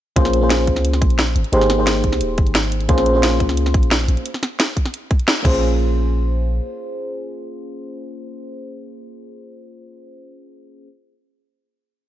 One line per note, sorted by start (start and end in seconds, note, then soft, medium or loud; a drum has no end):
0.16 0.78 A#1 loud
0.16 0.40 A#3 medium
0.16 0.40 C#4 medium
0.16 0.40 F4 medium
0.16 0.40 G#4 medium
0.16 0.40 C5 loud
0.16 kick loud
0.16 closed hi-hat loud
0.25 snare soft
0.33 closed hi-hat medium
0.41 1.34 A#3 medium
0.41 1.34 C#4 medium
0.41 1.35 F4 medium
0.41 1.35 G#4 medium
0.41 1.35 C5 medium
0.50 snare loud
0.50 closed hi-hat loud
0.67 kick medium
0.67 closed hi-hat medium
0.76 1.03 C#2 loud
0.76 snare soft
0.85 closed hi-hat medium
0.93 snare soft
1.02 1.34 A#1 loud
1.02 kick loud
1.02 closed hi-hat medium
1.10 closed hi-hat soft
1.19 snare loud
1.19 closed hi-hat loud
1.36 1.43 G#1 loud
1.36 closed hi-hat medium
1.44 closed hi-hat soft
1.52 2.14 G#1 loud
1.52 1.76 A#3 medium
1.52 1.76 D#4 medium
1.52 1.77 G4 medium
1.52 1.77 G#4 medium
1.52 1.77 C5 loud
1.52 closed hi-hat medium
1.61 snare soft
1.70 snare medium
1.70 closed hi-hat medium
1.77 2.87 A#3 medium
1.77 2.87 D#4 medium
1.77 2.87 G4 medium
1.77 2.87 G#4 medium
1.77 2.88 C5 medium
1.87 snare loud
1.87 closed hi-hat loud
2.04 kick medium
2.04 closed hi-hat medium
2.12 2.22 C2 loud
2.12 snare soft
2.21 2.39 D#1 medium
2.21 closed hi-hat medium
2.38 2.88 G#1 loud
2.38 kick loud
2.38 closed hi-hat medium
2.47 closed hi-hat soft
2.55 snare loud
2.55 closed hi-hat medium
2.72 closed hi-hat medium
2.81 closed hi-hat soft
2.88 3.50 A#1 loud
2.88 3.12 A#3 loud
2.88 3.13 C#4 medium
2.88 3.13 F4 medium
2.88 3.13 G#4 medium
2.88 3.13 C5 loud
2.88 kick loud
2.88 closed hi-hat medium
2.98 snare soft
3.06 closed hi-hat medium
3.13 4.23 A#3 medium
3.13 4.23 C#4 medium
3.13 4.23 F4 medium
3.13 4.24 G#4 medium
3.13 4.24 C5 medium
3.23 snare loud
3.23 closed hi-hat medium
3.40 kick medium
3.40 closed hi-hat medium
3.49 3.76 C#2 loud
3.49 snare soft
3.57 closed hi-hat medium
3.66 snare soft
3.74 4.07 A#1 loud
3.74 kick loud
3.74 closed hi-hat medium
3.83 closed hi-hat soft
3.91 snare loud
3.91 closed hi-hat medium
4.08 4.16 A#1 loud
4.08 closed hi-hat medium
4.17 closed hi-hat soft
4.26 closed hi-hat medium
4.34 snare soft
4.43 snare medium
4.43 closed hi-hat medium
4.60 snare loud
4.60 closed hi-hat medium
4.77 kick medium
4.77 closed hi-hat medium
4.85 snare soft
4.94 closed hi-hat medium
5.11 kick loud
5.11 closed hi-hat medium
5.19 closed hi-hat soft
5.28 snare loud
5.28 closed hi-hat medium
5.43 6.60 A#1 loud
5.43 9.79 A#3 medium
5.43 9.80 C#4 medium
5.43 9.81 F4 medium
5.43 9.81 G#4 medium
5.43 9.81 C5 medium
5.43 kick loud
5.43 crash medium